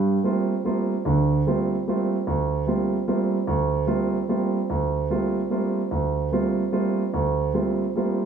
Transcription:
0.00 0.17 G2 medium
0.00 0.17 G3 medium
0.24 0.52 G3 medium
0.24 0.52 A3 soft
0.24 0.52 A#3 soft
0.24 0.52 C4 soft
0.24 0.53 F4 medium
0.64 0.92 G3 soft
0.64 0.93 A3 soft
0.64 0.93 A#3 soft
0.64 0.93 C4 soft
0.64 0.93 F4 medium
1.05 1.40 D2 medium
1.05 1.40 D3 medium
1.47 1.74 G3 medium
1.47 1.74 A3 soft
1.47 1.74 A#3 soft
1.47 1.74 C4 soft
1.47 1.75 F4 medium
1.87 2.15 G3 soft
1.87 2.15 A3 medium
1.87 2.15 A#3 soft
1.87 2.15 C4 soft
1.87 2.16 F4 medium
2.27 2.62 D2 medium
2.67 2.95 G3 medium
2.67 2.95 A3 soft
2.67 2.95 A#3 soft
2.67 2.95 C4 soft
2.67 2.96 F4 medium
3.07 3.36 G3 medium
3.07 3.36 A3 medium
3.07 3.36 A#3 soft
3.07 3.36 C4 soft
3.07 3.36 F4 medium
3.47 3.83 D2 medium
3.87 4.17 G3 medium
3.87 4.16 A3 medium
3.87 4.17 A#3 soft
3.87 4.17 C4 soft
3.87 4.16 F4 medium
4.29 4.58 G3 medium
4.29 4.58 A3 soft
4.29 4.58 A#3 soft
4.29 4.58 C4 soft
4.29 4.58 F4 medium
4.70 5.05 D2 medium
5.10 5.39 G3 soft
5.10 5.39 A3 soft
5.10 5.39 A#3 soft
5.10 5.39 C4 soft
5.10 5.39 F4 medium
5.50 5.80 G3 medium
5.50 5.80 A3 soft
5.50 5.79 A#3 soft
5.50 5.80 C4 soft
5.50 5.80 F4 medium
5.91 6.27 D2 medium
6.32 6.61 G3 medium
6.32 6.61 A3 soft
6.32 6.61 A#3 soft
6.32 6.61 C4 soft
6.32 6.61 F4 medium
6.72 7.01 G3 medium
6.72 7.02 A3 soft
6.72 7.02 A#3 soft
6.72 7.02 C4 soft
6.72 7.02 F4 medium
7.14 7.49 D2 medium
7.54 7.83 G3 soft
7.54 7.83 A3 soft
7.54 7.83 A#3 soft
7.54 7.83 C4 soft
7.54 7.83 F4 medium
7.95 8.24 G3 medium
7.95 8.25 A3 soft
7.95 8.25 A#3 soft
7.95 8.25 C4 soft
7.95 8.25 F4 medium

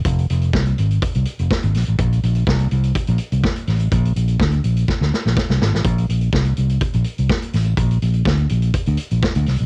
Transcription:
0.05 0.25 F1 loud
0.05 kick loud
0.05 closed hi-hat loud
0.18 closed hi-hat medium
0.29 0.49 F1 loud
0.29 closed hi-hat medium
0.41 closed hi-hat soft
0.53 0.73 C2 loud
0.53 kick loud
0.53 snare loud
0.65 closed hi-hat soft
0.78 0.98 G#1 loud
0.78 closed hi-hat medium
0.91 closed hi-hat soft
1.02 kick loud
1.02 closed hi-hat medium
1.14 1.24 C2 medium
1.14 closed hi-hat medium
1.25 closed hi-hat medium
1.39 1.48 F1 loud
1.39 closed hi-hat medium
1.50 kick loud
1.50 snare loud
1.63 1.73 G#1 loud
1.63 closed hi-hat medium
1.74 1.85 A#1 loud
1.74 snare soft
1.74 open hi-hat medium
1.86 1.97 A1 medium
1.86 closed hi-hat soft
1.99 2.18 A#1 loud
1.99 kick loud
1.99 closed hi-hat medium
2.12 closed hi-hat soft
2.23 2.43 A#1 loud
2.23 closed hi-hat medium
2.35 closed hi-hat soft
2.47 2.67 C2 loud
2.47 kick loud
2.47 snare loud
2.59 closed hi-hat soft
2.71 2.91 C2 loud
2.71 closed hi-hat medium
2.83 closed hi-hat soft
2.95 kick loud
2.95 closed hi-hat medium
3.07 3.17 A#1 loud
3.07 closed hi-hat medium
3.18 closed hi-hat medium
3.32 3.41 C2 loud
3.32 closed hi-hat medium
3.44 kick loud
3.44 snare loud
3.56 closed hi-hat soft
3.67 3.87 A1 medium
3.67 snare soft
3.67 open hi-hat medium
3.79 closed hi-hat soft
3.92 4.11 A#1 loud
3.92 kick loud
3.92 closed hi-hat medium
4.05 closed hi-hat medium
4.16 4.35 A#1 loud
4.16 closed hi-hat medium
4.28 closed hi-hat soft
4.40 4.60 D2 loud
4.40 kick loud
4.40 snare loud
4.52 closed hi-hat soft
4.64 4.84 A#1 medium
4.64 closed hi-hat medium
4.76 closed hi-hat soft
4.88 kick loud
4.88 snare medium
5.01 5.10 D2 loud
5.01 snare medium
5.14 snare medium
5.26 5.35 A#1 medium
5.26 snare medium
5.37 kick loud
5.37 snare medium
5.50 5.59 C2 medium
5.50 snare medium
5.61 5.71 G#1 medium
5.61 snare loud
5.74 5.83 A1 medium
5.74 snare medium
5.85 6.04 A#1 loud
5.85 kick loud
5.85 closed hi-hat medium
5.98 closed hi-hat medium
6.09 6.29 A#1 medium
6.09 closed hi-hat medium
6.21 closed hi-hat soft
6.33 6.53 C2 loud
6.33 kick loud
6.33 snare loud
6.45 closed hi-hat soft
6.57 6.77 C2 medium
6.57 closed hi-hat medium
6.69 closed hi-hat medium
6.81 kick loud
6.81 closed hi-hat medium
6.93 7.03 A#1 loud
6.93 closed hi-hat medium
7.04 closed hi-hat medium
7.18 7.28 C2 medium
7.18 closed hi-hat medium
7.30 kick loud
7.30 snare loud
7.42 closed hi-hat medium
7.53 7.73 A1 loud
7.53 snare soft
7.53 open hi-hat medium
7.65 closed hi-hat soft
7.77 7.97 A#1 medium
7.77 kick loud
7.77 closed hi-hat loud
7.91 closed hi-hat medium
8.02 8.22 A#1 loud
8.02 closed hi-hat medium
8.14 closed hi-hat soft
8.26 8.45 D2 loud
8.26 kick loud
8.26 snare loud
8.37 closed hi-hat soft
8.49 8.70 A#1 loud
8.49 closed hi-hat medium
8.62 closed hi-hat soft
8.74 kick loud
8.74 closed hi-hat medium
8.86 8.96 D2 loud
8.86 closed hi-hat medium
8.97 closed hi-hat medium
9.11 9.20 A#1 loud
9.11 closed hi-hat medium
9.23 kick loud
9.23 snare loud
9.35 9.45 D2 loud
9.35 closed hi-hat medium
9.46 9.57 C2 loud
9.46 snare soft
9.46 open hi-hat medium
9.58 9.66 B1 medium
9.58 closed hi-hat medium

